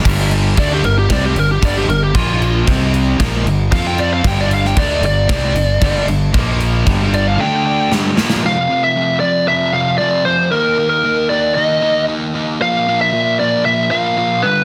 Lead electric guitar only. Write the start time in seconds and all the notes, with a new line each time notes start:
0.59 D5
0.74 G4
0.85 A#4
0.99 G4
1.12 D5
1.25 G4
1.39 A#4
1.52 G4
1.65 D5
1.77 G4
1.90 A#4
2.04 G4
2.15 F4
3.73 F5
3.87 G5
3.99 D5
4.13 F5
4.27 G5
4.41 D5
4.54 F5
4.67 G5
4.78 D5
5.06 D5
7.14 D5
7.27 F5
7.40 G5
7.66 G5
8.46 F5
8.84 E5
9.20 D5
9.48 E5
9.73 F5
9.98 D5
10.25 C5
10.52 A#4
10.90 A#4
11.29 D5
11.54 D#5
12.62 F5
13.01 E5
13.39 D5
13.65 E5
13.91 F5
14.42 B4